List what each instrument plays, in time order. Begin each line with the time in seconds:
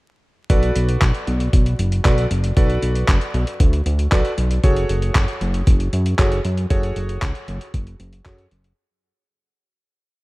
0.50 analog synth bass B1, electric grand piano F#4 A4 B4 D5, kick, closed hi-hat
0.63 closed hi-hat
0.76 analog synth bass B1, closed hi-hat
0.89 closed hi-hat
1.02 analog synth bass B1, kick, clap, closed hi-hat
1.14 closed hi-hat
1.27 analog synth bass B1, closed hi-hat
1.40 closed hi-hat
1.53 analog synth bass B1, kick, closed hi-hat
1.66 closed hi-hat
1.79 analog synth bass F#1, closed hi-hat
1.92 closed hi-hat
2.05 analog synth bass B1, electric grand piano F#4 A4 B4 D5, kick, clap, closed hi-hat
2.18 closed hi-hat
2.31 analog synth bass F#1, closed hi-hat
2.44 closed hi-hat
2.57 analog synth bass B1, electric grand piano F#4 A4 B4 D5, kick, closed hi-hat
2.70 closed hi-hat
2.82 analog synth bass B1, closed hi-hat
2.95 closed hi-hat
3.08 analog synth bass F#1, kick, clap, closed hi-hat
3.21 closed hi-hat
3.34 analog synth bass B1, closed hi-hat
3.47 closed hi-hat
3.60 analog synth bass D2, kick, closed hi-hat
3.73 closed hi-hat
3.86 analog synth bass D2, closed hi-hat
3.99 closed hi-hat
4.12 analog synth bass B1, electric grand piano F#4 A4 B4 D5, kick, clap, closed hi-hat
4.25 closed hi-hat
4.38 analog synth bass B1, closed hi-hat
4.51 closed hi-hat
4.64 analog synth bass F#1, electric grand piano F#4 G#4 A4 C#5, kick, closed hi-hat
4.76 closed hi-hat
4.89 analog synth bass F#1, closed hi-hat
5.02 closed hi-hat
5.15 analog synth bass F#1, kick, clap, closed hi-hat
5.28 closed hi-hat
5.41 analog synth bass F#1, closed hi-hat
5.54 closed hi-hat
5.67 analog synth bass F#1, kick, closed hi-hat
5.80 closed hi-hat
5.93 analog synth bass F#2, closed hi-hat
6.06 closed hi-hat
6.19 analog synth bass F#1, electric grand piano F#4 G#4 A4 C#5, kick, clap, closed hi-hat
6.32 closed hi-hat
6.45 analog synth bass F#2, closed hi-hat
6.58 closed hi-hat
6.70 analog synth bass F#1, electric grand piano F#4 G#4 A4 C#5, kick, closed hi-hat
6.83 closed hi-hat
6.96 analog synth bass F#1, closed hi-hat
7.09 closed hi-hat
7.22 analog synth bass C#2, kick, clap, closed hi-hat
7.35 closed hi-hat
7.48 analog synth bass F#1, closed hi-hat
7.61 closed hi-hat
7.74 analog synth bass F#1, kick, closed hi-hat
7.87 closed hi-hat
8.00 analog synth bass F#1, closed hi-hat
8.13 closed hi-hat
8.25 analog synth bass F#2, electric grand piano F#4 G#4 A4 C#5, kick, clap, closed hi-hat
8.38 closed hi-hat
8.51 analog synth bass F#1, closed hi-hat
8.64 closed hi-hat